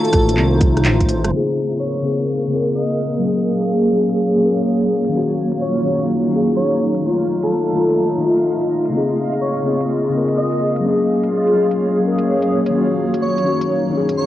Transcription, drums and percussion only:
0.05 closed hi-hat
0.13 kick, cross-stick, open hi-hat
0.29 closed hi-hat
0.37 clap
0.61 kick, open hi-hat
0.77 cross-stick, closed hi-hat
0.85 clap, open hi-hat
1.00 kick, closed hi-hat
1.09 open hi-hat
1.24 cross-stick, closed hi-hat
1.72 closed hi-hat
1.95 closed hi-hat
2.19 closed hi-hat
2.67 closed hi-hat
2.91 closed hi-hat
3.14 closed hi-hat
3.62 closed hi-hat
3.86 closed hi-hat
4.09 closed hi-hat
4.57 closed hi-hat
4.81 closed hi-hat
5.04 closed hi-hat
5.52 closed hi-hat
5.76 closed hi-hat
5.99 closed hi-hat
6.47 closed hi-hat
6.71 closed hi-hat
6.95 closed hi-hat
7.43 closed hi-hat
7.66 closed hi-hat
7.90 closed hi-hat
8.38 closed hi-hat
8.62 closed hi-hat
8.86 closed hi-hat
9.33 closed hi-hat
9.57 closed hi-hat
9.81 closed hi-hat
10.28 closed hi-hat
10.52 closed hi-hat
10.76 closed hi-hat
11.24 closed hi-hat
11.47 closed hi-hat
11.71 closed hi-hat
12.19 closed hi-hat
12.42 closed hi-hat
12.66 closed hi-hat
13.14 closed hi-hat
13.38 closed hi-hat
13.61 closed hi-hat
14.09 closed hi-hat

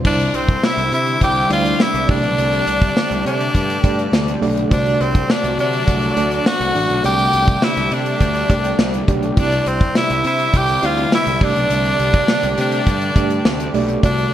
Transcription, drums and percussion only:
0.05 kick, crash
0.20 closed hi-hat
0.34 closed hi-hat
0.49 kick, closed hi-hat
0.63 snare, tambourine
0.78 closed hi-hat
0.92 closed hi-hat
1.07 closed hi-hat
1.21 kick, closed hi-hat
1.36 closed hi-hat
1.50 closed hi-hat
1.65 closed hi-hat
1.80 snare, tambourine
1.95 closed hi-hat
2.09 kick, open hi-hat
2.24 closed hi-hat
2.38 closed hi-hat
2.53 closed hi-hat
2.67 closed hi-hat
2.82 kick, closed hi-hat
2.97 snare, tambourine
3.11 closed hi-hat
3.26 closed hi-hat
3.41 closed hi-hat
3.55 kick, closed hi-hat
3.70 closed hi-hat
3.84 kick, closed hi-hat
3.99 closed hi-hat
4.13 snare, tambourine
4.28 closed hi-hat
4.43 open hi-hat
4.57 closed hi-hat
4.71 kick, closed hi-hat
4.86 closed hi-hat
5.01 closed hi-hat
5.15 kick, closed hi-hat
5.30 snare, tambourine
5.44 closed hi-hat
5.59 closed hi-hat
5.73 closed hi-hat
5.88 kick, closed hi-hat
6.02 closed hi-hat
6.17 closed hi-hat
6.31 closed hi-hat
6.46 snare, tambourine
6.61 closed hi-hat
6.75 open hi-hat
6.90 closed hi-hat
7.04 closed hi-hat
7.19 closed hi-hat
7.33 closed hi-hat
7.47 kick, closed hi-hat
7.62 snare, tambourine
7.77 closed hi-hat
7.91 closed hi-hat
8.06 closed hi-hat
8.20 kick, closed hi-hat
8.35 closed hi-hat
8.50 kick, closed hi-hat
8.64 closed hi-hat
8.79 snare, tambourine
8.94 closed hi-hat
9.08 kick, closed hi-hat
9.23 closed hi-hat
9.37 kick, closed hi-hat
9.52 closed hi-hat
9.66 closed hi-hat
9.81 kick, closed hi-hat
9.95 snare, tambourine
10.10 closed hi-hat
10.24 closed hi-hat
10.39 closed hi-hat
10.54 kick, closed hi-hat
10.68 closed hi-hat
10.83 closed hi-hat
10.97 closed hi-hat
11.12 snare, tambourine
11.27 closed hi-hat
11.41 kick, open hi-hat
11.56 closed hi-hat
11.70 closed hi-hat
11.85 closed hi-hat
11.99 closed hi-hat
12.14 kick, closed hi-hat
12.28 snare, tambourine
12.43 closed hi-hat
12.58 closed hi-hat
12.72 closed hi-hat
12.87 kick, closed hi-hat
13.01 closed hi-hat
13.16 kick, closed hi-hat
13.30 closed hi-hat
13.45 snare, tambourine
13.60 closed hi-hat
13.74 open hi-hat
13.89 closed hi-hat
14.03 kick, closed hi-hat
14.18 closed hi-hat

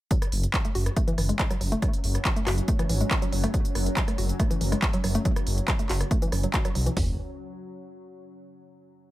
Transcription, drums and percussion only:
0.11 kick, closed hi-hat
0.22 cross-stick, closed hi-hat
0.32 open hi-hat
0.43 closed hi-hat
0.54 kick, cross-stick, clap, closed hi-hat
0.65 closed hi-hat
0.75 open hi-hat
0.86 cross-stick, closed hi-hat
0.96 kick, closed hi-hat
1.08 closed hi-hat
1.18 cross-stick, open hi-hat
1.29 closed hi-hat
1.39 kick, clap, closed hi-hat
1.51 cross-stick, closed hi-hat
1.61 open hi-hat
1.72 closed hi-hat
1.82 kick, cross-stick, closed hi-hat
1.93 closed hi-hat
2.04 open hi-hat
2.15 cross-stick, closed hi-hat
2.25 kick, clap, closed hi-hat
2.36 closed hi-hat
2.47 cross-stick, clap, open hi-hat
2.58 closed hi-hat
2.68 kick, closed hi-hat
2.79 cross-stick, closed hi-hat
2.89 open hi-hat
3.01 closed hi-hat
3.11 kick, cross-stick, clap, closed hi-hat
3.22 closed hi-hat
3.32 open hi-hat
3.44 cross-stick, closed hi-hat
3.54 kick, closed hi-hat
3.65 closed hi-hat
3.75 cross-stick, open hi-hat
3.86 closed hi-hat
3.97 kick, clap, closed hi-hat
4.08 cross-stick, closed hi-hat
4.18 open hi-hat
4.29 closed hi-hat
4.40 kick, cross-stick, closed hi-hat
4.51 closed hi-hat
4.61 open hi-hat
4.72 cross-stick, closed hi-hat
4.82 kick, clap, closed hi-hat
4.93 closed hi-hat
5.04 cross-stick, open hi-hat
5.15 closed hi-hat
5.25 kick, closed hi-hat
5.36 cross-stick, closed hi-hat
5.47 open hi-hat
5.58 closed hi-hat
5.68 kick, cross-stick, clap, closed hi-hat
5.79 closed hi-hat
5.89 clap, open hi-hat
6.01 cross-stick, closed hi-hat
6.11 kick, closed hi-hat
6.22 closed hi-hat
6.32 cross-stick, open hi-hat
6.43 closed hi-hat
6.54 kick, clap, closed hi-hat
6.65 cross-stick, closed hi-hat
6.75 open hi-hat
6.86 closed hi-hat
6.97 kick, floor tom, open hi-hat

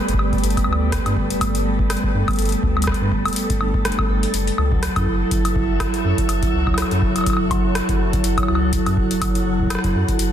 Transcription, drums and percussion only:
0.08 closed hi-hat
0.14 kick
0.19 high woodblock
0.33 kick, closed hi-hat
0.38 closed hi-hat
0.44 closed hi-hat
0.50 closed hi-hat
0.57 kick, closed hi-hat, high woodblock
0.64 high woodblock
0.73 high woodblock
0.92 kick, cross-stick, closed hi-hat
1.06 closed hi-hat, high woodblock
1.17 kick
1.30 closed hi-hat
1.41 kick, closed hi-hat, high woodblock
1.55 closed hi-hat
1.79 kick
1.90 cross-stick, closed hi-hat, high woodblock
1.97 closed hi-hat
2.04 kick
2.28 kick, closed hi-hat, high woodblock
2.31 closed hi-hat
2.33 closed hi-hat
2.36 closed hi-hat
2.39 closed hi-hat
2.42 closed hi-hat
2.45 closed hi-hat
2.49 closed hi-hat
2.52 closed hi-hat
2.63 kick
2.77 high woodblock
2.82 closed hi-hat, high woodblock
2.87 kick, cross-stick
2.92 closed hi-hat, high woodblock
3.12 kick
3.25 closed hi-hat, high woodblock
3.28 closed hi-hat
3.33 closed hi-hat
3.36 closed hi-hat
3.50 kick, closed hi-hat
3.61 high woodblock
3.74 kick
3.85 cross-stick, closed hi-hat
3.92 closed hi-hat
3.99 kick, high woodblock
4.23 closed hi-hat
4.34 closed hi-hat
4.47 closed hi-hat
4.58 high woodblock
4.72 kick
4.83 cross-stick, closed hi-hat
4.96 kick, closed hi-hat, high woodblock
5.31 kick, closed hi-hat
5.45 closed hi-hat, high woodblock
5.56 kick
5.80 kick, cross-stick, closed hi-hat, high woodblock
5.94 closed hi-hat
6.18 kick, closed hi-hat
6.29 closed hi-hat, high woodblock
6.43 kick, closed hi-hat
6.67 kick, high woodblock
6.74 cross-stick, closed hi-hat, high woodblock
6.82 high woodblock
6.91 closed hi-hat
7.02 kick
7.16 closed hi-hat, high woodblock
7.18 high woodblock
7.21 high woodblock
7.24 kick, closed hi-hat, high woodblock
7.26 high woodblock
7.30 high woodblock
7.33 high woodblock
7.37 high woodblock
7.51 kick, closed hi-hat, high woodblock
7.75 cross-stick, closed hi-hat
7.89 kick, closed hi-hat
8.13 kick, closed hi-hat
8.24 closed hi-hat
8.38 kick, closed hi-hat, high woodblock
8.43 high woodblock
8.48 high woodblock
8.55 high woodblock
8.73 kick, closed hi-hat
8.86 closed hi-hat, high woodblock
8.97 kick
9.11 closed hi-hat
9.22 kick, closed hi-hat, high woodblock
9.35 closed hi-hat
9.60 kick
9.62 kick
9.67 kick, cross-stick, closed hi-hat, high woodblock
9.75 cross-stick
9.79 cross-stick
9.84 kick, closed hi-hat
9.86 kick
9.88 kick
9.90 kick
9.93 kick
10.08 kick, closed hi-hat
10.19 closed hi-hat

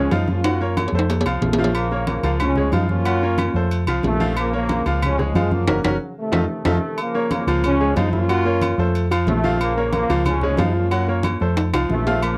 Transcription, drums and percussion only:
0.11 high conga, low timbale, low agogo
0.28 high conga
0.44 high conga, high timbale, low agogo
0.61 high conga
0.77 high conga, low agogo
0.88 low timbale
0.93 high conga
0.99 high timbale
1.10 high conga, low timbale, low agogo
1.21 low timbale
1.26 high conga, low agogo
1.42 high conga, low timbale
1.53 low timbale
1.58 high conga
1.64 low timbale
1.74 high conga, low agogo, claves
1.91 high conga
2.07 high conga, low agogo
2.23 high conga, low agogo
2.40 high conga, low conga, low agogo, claves
2.56 high conga, low conga
2.72 high conga, low agogo
2.89 high conga
3.05 high conga, low agogo, claves
3.22 high conga
3.38 high conga, low agogo, claves
3.55 high conga
3.71 high conga, low agogo
3.87 high conga, low agogo, claves
4.03 high conga, low timbale
4.20 high conga
4.36 high conga, low agogo, claves
4.53 high conga
4.69 high conga, low agogo
4.86 high conga, low agogo
5.02 high conga, low conga, low agogo, claves
5.20 high conga, low conga
5.35 high conga, low agogo
5.51 high conga
5.68 high conga, high timbale, claves
5.84 high conga, high timbale, claves
6.33 high conga, high timbale, claves
6.65 high conga, high timbale, claves
6.98 high conga, low agogo
7.15 high conga
7.31 high conga, low agogo
7.47 high conga, low agogo
7.64 high conga, low conga, low agogo
7.80 high conga
7.96 high conga, low timbale, low agogo
8.13 high conga
8.29 high conga, low agogo
8.46 high conga
8.62 high conga, low agogo
8.78 high conga
8.94 high conga, low agogo
9.11 high conga, low agogo
9.27 high conga, low timbale
9.44 high conga
9.60 high conga, low agogo
9.76 high conga
9.93 high conga, low agogo
10.09 high conga, low agogo
10.25 high conga, low conga, low agogo
10.41 high conga, low conga
10.57 high conga, low timbale, low agogo
10.91 high conga, low agogo
11.07 high conga
11.23 high conga, low agogo
11.40 high conga
11.56 high conga, high timbale, low agogo
11.73 high conga, high timbale, low agogo
11.90 high conga
12.07 low timbale
12.22 high conga, low agogo, claves

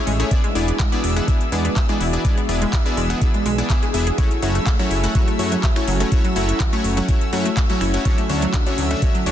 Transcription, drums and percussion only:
0.07 open hi-hat
0.20 closed hi-hat
0.31 kick, closed hi-hat
0.44 closed hi-hat
0.55 open hi-hat
0.68 closed hi-hat
0.80 kick, clap, closed hi-hat
0.92 closed hi-hat
1.04 open hi-hat
1.17 closed hi-hat
1.28 kick, closed hi-hat
1.41 closed hi-hat
1.52 open hi-hat
1.65 closed hi-hat
1.76 kick, clap, closed hi-hat
1.89 closed hi-hat
2.01 open hi-hat
2.13 closed hi-hat
2.25 kick, closed hi-hat
2.38 closed hi-hat
2.49 open hi-hat
2.62 closed hi-hat
2.73 kick, clap, closed hi-hat
2.86 closed hi-hat
2.97 open hi-hat
3.10 closed hi-hat
3.21 kick, closed hi-hat
3.34 closed hi-hat
3.46 open hi-hat
3.58 closed hi-hat
3.70 kick, clap, closed hi-hat
3.83 closed hi-hat
3.94 open hi-hat
4.07 closed hi-hat
4.18 kick, closed hi-hat
4.31 closed hi-hat
4.42 open hi-hat
4.55 closed hi-hat
4.67 kick, clap, closed hi-hat
4.79 closed hi-hat
4.91 open hi-hat
5.04 closed hi-hat
5.15 kick, closed hi-hat
5.28 closed hi-hat
5.39 open hi-hat
5.52 closed hi-hat
5.63 kick, clap, closed hi-hat
5.76 finger snap, closed hi-hat
5.88 open hi-hat
6.00 closed hi-hat
6.12 kick, closed hi-hat
6.25 closed hi-hat
6.36 open hi-hat
6.49 closed hi-hat
6.60 kick, clap, closed hi-hat
6.73 closed hi-hat
6.84 open hi-hat
6.97 closed hi-hat
7.09 kick, closed hi-hat
7.21 closed hi-hat
7.33 open hi-hat
7.45 closed hi-hat
7.57 kick, clap, closed hi-hat
7.70 closed hi-hat
7.81 finger snap, open hi-hat
7.94 closed hi-hat
8.05 kick, closed hi-hat
8.18 closed hi-hat
8.29 open hi-hat
8.42 closed hi-hat
8.54 kick, clap, closed hi-hat
8.66 closed hi-hat
8.78 open hi-hat
8.91 closed hi-hat
9.02 kick, closed hi-hat
9.15 closed hi-hat
9.26 open hi-hat

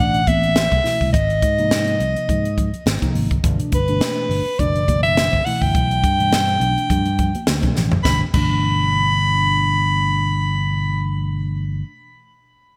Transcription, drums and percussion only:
0.14 closed hi-hat
0.27 kick, closed hi-hat, high conga
0.43 closed hi-hat
0.56 snare, closed hi-hat, high conga
0.72 kick, closed hi-hat
0.85 snare, open hi-hat
1.01 kick
1.14 kick, closed hi-hat, muted conga
1.30 closed hi-hat
1.42 kick, closed hi-hat, muted conga
1.58 closed hi-hat
1.71 snare, closed hi-hat, high conga
1.87 closed hi-hat
2.00 closed hi-hat, muted conga
2.16 closed hi-hat
2.29 kick, closed hi-hat, muted conga, low conga
2.45 closed hi-hat
2.58 kick, closed hi-hat, low conga
2.74 closed hi-hat
2.86 snare, closed hi-hat, high conga
3.02 kick, closed hi-hat
3.15 open hi-hat
3.31 kick, closed hi-hat
3.44 kick, closed hi-hat, muted conga
3.60 closed hi-hat
3.72 kick, closed hi-hat, muted conga
3.88 closed hi-hat
4.01 snare, closed hi-hat, high conga
4.31 open hi-hat, muted conga
4.59 kick, closed hi-hat, muted conga
4.76 closed hi-hat
4.88 kick, closed hi-hat, high conga
5.05 closed hi-hat
5.17 snare, closed hi-hat, high conga
5.33 kick, closed hi-hat
5.47 open hi-hat
5.62 kick
5.75 kick, closed hi-hat, muted conga
5.91 closed hi-hat
6.04 kick, closed hi-hat
6.20 closed hi-hat
6.33 snare, closed hi-hat, high conga
6.48 closed hi-hat
6.61 closed hi-hat, muted conga
6.78 closed hi-hat
6.90 kick, closed hi-hat, muted conga, low conga
7.05 closed hi-hat
7.19 kick, closed hi-hat, low conga
7.35 closed hi-hat, high conga
7.47 snare, closed hi-hat, high conga
7.63 kick, closed hi-hat, high conga
7.76 snare, low conga
7.92 floor tom, low conga
8.05 kick, snare, muted conga
8.34 kick, crash, muted conga

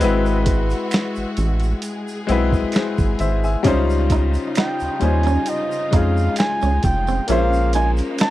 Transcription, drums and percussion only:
0.01 closed hi-hat, shaker
0.26 shaker
0.46 kick, closed hi-hat, shaker
0.70 closed hi-hat, shaker
0.91 finger snap, snare, closed hi-hat, shaker
1.16 shaker
1.37 closed hi-hat, shaker
1.60 closed hi-hat, shaker
1.82 closed hi-hat, shaker
2.08 shaker
2.29 closed hi-hat, shaker
2.52 kick, shaker
2.72 finger snap, snare, closed hi-hat, shaker
2.98 kick, shaker
3.19 closed hi-hat, shaker
3.44 shaker
3.64 kick, closed hi-hat, shaker
3.90 shaker
4.10 kick, closed hi-hat, shaker
4.34 closed hi-hat, shaker
4.55 finger snap, snare, closed hi-hat, shaker
4.80 shaker
5.01 closed hi-hat, shaker
5.23 closed hi-hat, shaker
5.46 closed hi-hat, shaker
5.72 shaker
5.93 kick, closed hi-hat, shaker
6.17 shaker
6.36 finger snap, snare, closed hi-hat, shaker
6.62 shaker
6.83 kick, closed hi-hat, shaker
7.07 shaker
7.28 closed hi-hat, shaker
7.53 shaker
7.73 closed hi-hat, shaker
7.97 closed hi-hat, shaker
8.18 finger snap, snare, closed hi-hat, shaker

